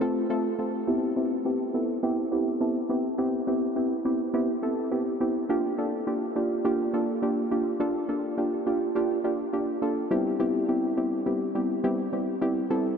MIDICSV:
0, 0, Header, 1, 2, 480
1, 0, Start_track
1, 0, Key_signature, 0, "major"
1, 0, Tempo, 576923
1, 730, Time_signature, 4, 2, 24, 8
1, 10795, End_track
2, 0, Start_track
2, 0, Title_t, "Synth stab"
2, 0, Program_c, 0, 62
2, 7, Note_on_c, 0, 57, 114
2, 8, Note_on_c, 0, 60, 105
2, 10, Note_on_c, 0, 65, 105
2, 10, Note_on_c, 0, 69, 127
2, 207, Note_off_c, 0, 57, 0
2, 208, Note_off_c, 0, 60, 0
2, 208, Note_off_c, 0, 65, 0
2, 208, Note_off_c, 0, 69, 0
2, 247, Note_on_c, 0, 57, 110
2, 249, Note_on_c, 0, 60, 101
2, 250, Note_on_c, 0, 65, 97
2, 251, Note_on_c, 0, 69, 120
2, 447, Note_off_c, 0, 57, 0
2, 448, Note_off_c, 0, 60, 0
2, 449, Note_off_c, 0, 65, 0
2, 449, Note_off_c, 0, 69, 0
2, 487, Note_on_c, 0, 57, 82
2, 489, Note_on_c, 0, 60, 76
2, 490, Note_on_c, 0, 65, 77
2, 491, Note_on_c, 0, 69, 88
2, 687, Note_off_c, 0, 57, 0
2, 688, Note_off_c, 0, 60, 0
2, 689, Note_off_c, 0, 65, 0
2, 689, Note_off_c, 0, 69, 0
2, 727, Note_on_c, 0, 59, 112
2, 728, Note_on_c, 0, 60, 101
2, 729, Note_on_c, 0, 64, 104
2, 731, Note_on_c, 0, 67, 124
2, 927, Note_off_c, 0, 59, 0
2, 928, Note_off_c, 0, 60, 0
2, 928, Note_off_c, 0, 64, 0
2, 929, Note_off_c, 0, 67, 0
2, 967, Note_on_c, 0, 59, 86
2, 968, Note_on_c, 0, 60, 76
2, 970, Note_on_c, 0, 64, 80
2, 971, Note_on_c, 0, 67, 92
2, 1167, Note_off_c, 0, 59, 0
2, 1167, Note_off_c, 0, 60, 0
2, 1168, Note_off_c, 0, 64, 0
2, 1169, Note_off_c, 0, 67, 0
2, 1206, Note_on_c, 0, 59, 82
2, 1208, Note_on_c, 0, 60, 74
2, 1209, Note_on_c, 0, 64, 73
2, 1210, Note_on_c, 0, 67, 97
2, 1407, Note_off_c, 0, 59, 0
2, 1407, Note_off_c, 0, 60, 0
2, 1408, Note_off_c, 0, 64, 0
2, 1409, Note_off_c, 0, 67, 0
2, 1447, Note_on_c, 0, 59, 86
2, 1449, Note_on_c, 0, 60, 79
2, 1449, Note_on_c, 0, 64, 83
2, 1451, Note_on_c, 0, 69, 96
2, 1647, Note_off_c, 0, 59, 0
2, 1648, Note_off_c, 0, 60, 0
2, 1648, Note_off_c, 0, 64, 0
2, 1649, Note_off_c, 0, 69, 0
2, 1687, Note_on_c, 0, 59, 110
2, 1688, Note_on_c, 0, 60, 101
2, 1689, Note_on_c, 0, 64, 101
2, 1692, Note_on_c, 0, 67, 120
2, 1887, Note_off_c, 0, 59, 0
2, 1888, Note_off_c, 0, 60, 0
2, 1888, Note_off_c, 0, 64, 0
2, 1889, Note_off_c, 0, 67, 0
2, 1927, Note_on_c, 0, 59, 90
2, 1928, Note_on_c, 0, 60, 84
2, 1930, Note_on_c, 0, 64, 81
2, 1932, Note_on_c, 0, 67, 97
2, 2127, Note_off_c, 0, 59, 0
2, 2128, Note_off_c, 0, 60, 0
2, 2129, Note_off_c, 0, 64, 0
2, 2129, Note_off_c, 0, 67, 0
2, 2168, Note_on_c, 0, 59, 85
2, 2168, Note_on_c, 0, 60, 78
2, 2170, Note_on_c, 0, 64, 81
2, 2172, Note_on_c, 0, 69, 91
2, 2367, Note_off_c, 0, 59, 0
2, 2368, Note_off_c, 0, 60, 0
2, 2369, Note_off_c, 0, 64, 0
2, 2369, Note_off_c, 0, 69, 0
2, 2407, Note_on_c, 0, 59, 85
2, 2408, Note_on_c, 0, 60, 77
2, 2409, Note_on_c, 0, 64, 75
2, 2411, Note_on_c, 0, 67, 90
2, 2607, Note_off_c, 0, 59, 0
2, 2608, Note_off_c, 0, 60, 0
2, 2608, Note_off_c, 0, 64, 0
2, 2609, Note_off_c, 0, 67, 0
2, 2646, Note_on_c, 0, 59, 115
2, 2648, Note_on_c, 0, 60, 106
2, 2649, Note_on_c, 0, 64, 102
2, 2650, Note_on_c, 0, 67, 123
2, 2847, Note_off_c, 0, 59, 0
2, 2847, Note_off_c, 0, 60, 0
2, 2848, Note_off_c, 0, 64, 0
2, 2849, Note_off_c, 0, 67, 0
2, 2887, Note_on_c, 0, 59, 86
2, 2889, Note_on_c, 0, 60, 79
2, 2890, Note_on_c, 0, 64, 84
2, 2892, Note_on_c, 0, 67, 97
2, 3087, Note_off_c, 0, 59, 0
2, 3088, Note_off_c, 0, 60, 0
2, 3089, Note_off_c, 0, 64, 0
2, 3089, Note_off_c, 0, 67, 0
2, 3127, Note_on_c, 0, 59, 86
2, 3128, Note_on_c, 0, 60, 78
2, 3130, Note_on_c, 0, 64, 77
2, 3132, Note_on_c, 0, 67, 92
2, 3327, Note_off_c, 0, 59, 0
2, 3328, Note_off_c, 0, 60, 0
2, 3328, Note_off_c, 0, 64, 0
2, 3329, Note_off_c, 0, 67, 0
2, 3368, Note_on_c, 0, 59, 86
2, 3369, Note_on_c, 0, 60, 84
2, 3371, Note_on_c, 0, 64, 81
2, 3372, Note_on_c, 0, 67, 96
2, 3568, Note_off_c, 0, 59, 0
2, 3568, Note_off_c, 0, 60, 0
2, 3569, Note_off_c, 0, 64, 0
2, 3570, Note_off_c, 0, 67, 0
2, 3607, Note_on_c, 0, 59, 115
2, 3609, Note_on_c, 0, 60, 101
2, 3611, Note_on_c, 0, 64, 98
2, 3612, Note_on_c, 0, 67, 117
2, 3807, Note_off_c, 0, 59, 0
2, 3808, Note_off_c, 0, 60, 0
2, 3809, Note_off_c, 0, 64, 0
2, 3810, Note_off_c, 0, 67, 0
2, 3847, Note_on_c, 0, 59, 87
2, 3848, Note_on_c, 0, 60, 84
2, 3850, Note_on_c, 0, 64, 85
2, 3851, Note_on_c, 0, 69, 100
2, 4047, Note_off_c, 0, 59, 0
2, 4048, Note_off_c, 0, 60, 0
2, 4049, Note_off_c, 0, 64, 0
2, 4049, Note_off_c, 0, 69, 0
2, 4087, Note_on_c, 0, 59, 89
2, 4089, Note_on_c, 0, 60, 79
2, 4090, Note_on_c, 0, 64, 79
2, 4092, Note_on_c, 0, 67, 93
2, 4287, Note_off_c, 0, 59, 0
2, 4288, Note_off_c, 0, 60, 0
2, 4289, Note_off_c, 0, 64, 0
2, 4289, Note_off_c, 0, 67, 0
2, 4329, Note_on_c, 0, 59, 84
2, 4330, Note_on_c, 0, 60, 77
2, 4332, Note_on_c, 0, 64, 76
2, 4333, Note_on_c, 0, 67, 95
2, 4528, Note_off_c, 0, 59, 0
2, 4529, Note_off_c, 0, 60, 0
2, 4529, Note_off_c, 0, 64, 0
2, 4530, Note_off_c, 0, 67, 0
2, 4569, Note_on_c, 0, 58, 113
2, 4571, Note_on_c, 0, 62, 103
2, 4573, Note_on_c, 0, 65, 100
2, 4574, Note_on_c, 0, 67, 125
2, 4768, Note_off_c, 0, 58, 0
2, 4769, Note_off_c, 0, 62, 0
2, 4770, Note_off_c, 0, 65, 0
2, 4770, Note_off_c, 0, 67, 0
2, 4808, Note_on_c, 0, 58, 92
2, 4809, Note_on_c, 0, 62, 82
2, 4811, Note_on_c, 0, 65, 81
2, 4812, Note_on_c, 0, 69, 103
2, 5008, Note_off_c, 0, 58, 0
2, 5008, Note_off_c, 0, 62, 0
2, 5009, Note_off_c, 0, 65, 0
2, 5010, Note_off_c, 0, 69, 0
2, 5048, Note_on_c, 0, 58, 84
2, 5050, Note_on_c, 0, 62, 76
2, 5050, Note_on_c, 0, 65, 78
2, 5052, Note_on_c, 0, 67, 96
2, 5248, Note_off_c, 0, 58, 0
2, 5248, Note_off_c, 0, 62, 0
2, 5249, Note_off_c, 0, 65, 0
2, 5250, Note_off_c, 0, 67, 0
2, 5288, Note_on_c, 0, 58, 88
2, 5290, Note_on_c, 0, 62, 83
2, 5291, Note_on_c, 0, 65, 83
2, 5292, Note_on_c, 0, 67, 95
2, 5488, Note_off_c, 0, 58, 0
2, 5488, Note_off_c, 0, 62, 0
2, 5489, Note_off_c, 0, 65, 0
2, 5490, Note_off_c, 0, 67, 0
2, 5529, Note_on_c, 0, 58, 116
2, 5530, Note_on_c, 0, 62, 105
2, 5531, Note_on_c, 0, 65, 102
2, 5532, Note_on_c, 0, 67, 127
2, 5728, Note_off_c, 0, 58, 0
2, 5728, Note_off_c, 0, 62, 0
2, 5729, Note_off_c, 0, 65, 0
2, 5730, Note_off_c, 0, 67, 0
2, 5768, Note_on_c, 0, 58, 88
2, 5770, Note_on_c, 0, 62, 84
2, 5771, Note_on_c, 0, 65, 83
2, 5773, Note_on_c, 0, 69, 102
2, 5968, Note_off_c, 0, 58, 0
2, 5969, Note_off_c, 0, 62, 0
2, 5969, Note_off_c, 0, 65, 0
2, 5970, Note_off_c, 0, 69, 0
2, 6008, Note_on_c, 0, 58, 88
2, 6009, Note_on_c, 0, 62, 80
2, 6011, Note_on_c, 0, 65, 77
2, 6013, Note_on_c, 0, 67, 95
2, 6208, Note_off_c, 0, 58, 0
2, 6208, Note_off_c, 0, 62, 0
2, 6209, Note_off_c, 0, 65, 0
2, 6210, Note_off_c, 0, 67, 0
2, 6249, Note_on_c, 0, 58, 82
2, 6251, Note_on_c, 0, 62, 77
2, 6252, Note_on_c, 0, 65, 77
2, 6253, Note_on_c, 0, 67, 92
2, 6448, Note_off_c, 0, 58, 0
2, 6449, Note_off_c, 0, 62, 0
2, 6449, Note_off_c, 0, 65, 0
2, 6450, Note_off_c, 0, 67, 0
2, 6487, Note_on_c, 0, 58, 113
2, 6489, Note_on_c, 0, 62, 109
2, 6490, Note_on_c, 0, 65, 102
2, 6492, Note_on_c, 0, 69, 123
2, 6687, Note_off_c, 0, 58, 0
2, 6688, Note_off_c, 0, 62, 0
2, 6689, Note_off_c, 0, 65, 0
2, 6689, Note_off_c, 0, 69, 0
2, 6727, Note_on_c, 0, 58, 89
2, 6728, Note_on_c, 0, 62, 85
2, 6730, Note_on_c, 0, 65, 85
2, 6731, Note_on_c, 0, 69, 101
2, 6927, Note_off_c, 0, 58, 0
2, 6928, Note_off_c, 0, 62, 0
2, 6928, Note_off_c, 0, 65, 0
2, 6929, Note_off_c, 0, 69, 0
2, 6968, Note_on_c, 0, 58, 89
2, 6969, Note_on_c, 0, 62, 78
2, 6970, Note_on_c, 0, 65, 77
2, 6971, Note_on_c, 0, 67, 95
2, 7167, Note_off_c, 0, 58, 0
2, 7168, Note_off_c, 0, 62, 0
2, 7169, Note_off_c, 0, 65, 0
2, 7169, Note_off_c, 0, 67, 0
2, 7206, Note_on_c, 0, 58, 92
2, 7208, Note_on_c, 0, 62, 81
2, 7209, Note_on_c, 0, 65, 82
2, 7211, Note_on_c, 0, 67, 99
2, 7407, Note_off_c, 0, 58, 0
2, 7408, Note_off_c, 0, 62, 0
2, 7408, Note_off_c, 0, 65, 0
2, 7409, Note_off_c, 0, 67, 0
2, 7448, Note_on_c, 0, 58, 111
2, 7449, Note_on_c, 0, 62, 106
2, 7451, Note_on_c, 0, 65, 101
2, 7452, Note_on_c, 0, 67, 123
2, 7647, Note_off_c, 0, 58, 0
2, 7648, Note_off_c, 0, 62, 0
2, 7649, Note_off_c, 0, 65, 0
2, 7649, Note_off_c, 0, 67, 0
2, 7687, Note_on_c, 0, 58, 96
2, 7689, Note_on_c, 0, 62, 84
2, 7690, Note_on_c, 0, 65, 86
2, 7692, Note_on_c, 0, 67, 97
2, 7887, Note_off_c, 0, 58, 0
2, 7888, Note_off_c, 0, 62, 0
2, 7888, Note_off_c, 0, 65, 0
2, 7889, Note_off_c, 0, 67, 0
2, 7928, Note_on_c, 0, 58, 87
2, 7928, Note_on_c, 0, 62, 81
2, 7930, Note_on_c, 0, 65, 81
2, 7932, Note_on_c, 0, 67, 100
2, 8127, Note_off_c, 0, 58, 0
2, 8128, Note_off_c, 0, 62, 0
2, 8129, Note_off_c, 0, 65, 0
2, 8130, Note_off_c, 0, 67, 0
2, 8167, Note_on_c, 0, 58, 85
2, 8169, Note_on_c, 0, 62, 76
2, 8170, Note_on_c, 0, 65, 77
2, 8171, Note_on_c, 0, 69, 94
2, 8367, Note_off_c, 0, 58, 0
2, 8368, Note_off_c, 0, 62, 0
2, 8369, Note_off_c, 0, 65, 0
2, 8369, Note_off_c, 0, 69, 0
2, 8408, Note_on_c, 0, 55, 110
2, 8410, Note_on_c, 0, 59, 100
2, 8410, Note_on_c, 0, 60, 102
2, 8411, Note_on_c, 0, 64, 103
2, 8412, Note_on_c, 0, 67, 127
2, 8607, Note_off_c, 0, 55, 0
2, 8608, Note_off_c, 0, 59, 0
2, 8609, Note_off_c, 0, 60, 0
2, 8609, Note_off_c, 0, 64, 0
2, 8610, Note_off_c, 0, 67, 0
2, 8648, Note_on_c, 0, 55, 113
2, 8649, Note_on_c, 0, 59, 107
2, 8649, Note_on_c, 0, 60, 111
2, 8650, Note_on_c, 0, 64, 105
2, 8651, Note_on_c, 0, 67, 127
2, 8847, Note_off_c, 0, 55, 0
2, 8848, Note_off_c, 0, 59, 0
2, 8848, Note_off_c, 0, 60, 0
2, 8849, Note_off_c, 0, 64, 0
2, 8849, Note_off_c, 0, 67, 0
2, 8888, Note_on_c, 0, 55, 84
2, 8889, Note_on_c, 0, 59, 81
2, 8890, Note_on_c, 0, 60, 83
2, 8891, Note_on_c, 0, 64, 81
2, 8892, Note_on_c, 0, 67, 91
2, 9087, Note_off_c, 0, 55, 0
2, 9088, Note_off_c, 0, 59, 0
2, 9089, Note_off_c, 0, 60, 0
2, 9089, Note_off_c, 0, 64, 0
2, 9090, Note_off_c, 0, 67, 0
2, 9127, Note_on_c, 0, 55, 88
2, 9128, Note_on_c, 0, 59, 83
2, 9129, Note_on_c, 0, 60, 82
2, 9130, Note_on_c, 0, 64, 83
2, 9131, Note_on_c, 0, 67, 97
2, 9327, Note_off_c, 0, 55, 0
2, 9328, Note_off_c, 0, 59, 0
2, 9328, Note_off_c, 0, 60, 0
2, 9329, Note_off_c, 0, 64, 0
2, 9329, Note_off_c, 0, 67, 0
2, 9367, Note_on_c, 0, 55, 92
2, 9368, Note_on_c, 0, 59, 83
2, 9369, Note_on_c, 0, 60, 83
2, 9370, Note_on_c, 0, 64, 81
2, 9371, Note_on_c, 0, 67, 96
2, 9567, Note_off_c, 0, 55, 0
2, 9568, Note_off_c, 0, 59, 0
2, 9568, Note_off_c, 0, 60, 0
2, 9569, Note_off_c, 0, 64, 0
2, 9569, Note_off_c, 0, 67, 0
2, 9607, Note_on_c, 0, 55, 94
2, 9609, Note_on_c, 0, 59, 84
2, 9609, Note_on_c, 0, 60, 85
2, 9611, Note_on_c, 0, 64, 83
2, 9612, Note_on_c, 0, 67, 105
2, 9807, Note_off_c, 0, 55, 0
2, 9808, Note_off_c, 0, 59, 0
2, 9808, Note_off_c, 0, 60, 0
2, 9809, Note_off_c, 0, 64, 0
2, 9809, Note_off_c, 0, 67, 0
2, 9848, Note_on_c, 0, 55, 112
2, 9849, Note_on_c, 0, 59, 102
2, 9850, Note_on_c, 0, 60, 104
2, 9850, Note_on_c, 0, 64, 104
2, 9852, Note_on_c, 0, 67, 127
2, 10047, Note_off_c, 0, 55, 0
2, 10048, Note_off_c, 0, 59, 0
2, 10048, Note_off_c, 0, 60, 0
2, 10049, Note_off_c, 0, 64, 0
2, 10049, Note_off_c, 0, 67, 0
2, 10088, Note_on_c, 0, 55, 86
2, 10089, Note_on_c, 0, 59, 75
2, 10090, Note_on_c, 0, 60, 82
2, 10091, Note_on_c, 0, 64, 79
2, 10092, Note_on_c, 0, 67, 95
2, 10287, Note_off_c, 0, 55, 0
2, 10288, Note_off_c, 0, 59, 0
2, 10289, Note_off_c, 0, 60, 0
2, 10289, Note_off_c, 0, 64, 0
2, 10290, Note_off_c, 0, 67, 0
2, 10327, Note_on_c, 0, 55, 110
2, 10328, Note_on_c, 0, 59, 107
2, 10329, Note_on_c, 0, 60, 104
2, 10330, Note_on_c, 0, 64, 102
2, 10331, Note_on_c, 0, 67, 127
2, 10527, Note_off_c, 0, 55, 0
2, 10528, Note_off_c, 0, 59, 0
2, 10528, Note_off_c, 0, 60, 0
2, 10528, Note_off_c, 0, 64, 0
2, 10529, Note_off_c, 0, 67, 0
2, 10567, Note_on_c, 0, 55, 115
2, 10568, Note_on_c, 0, 59, 108
2, 10569, Note_on_c, 0, 60, 104
2, 10570, Note_on_c, 0, 64, 106
2, 10571, Note_on_c, 0, 69, 127
2, 10767, Note_off_c, 0, 55, 0
2, 10767, Note_off_c, 0, 59, 0
2, 10768, Note_off_c, 0, 60, 0
2, 10768, Note_off_c, 0, 64, 0
2, 10769, Note_off_c, 0, 69, 0
2, 10795, End_track
0, 0, End_of_file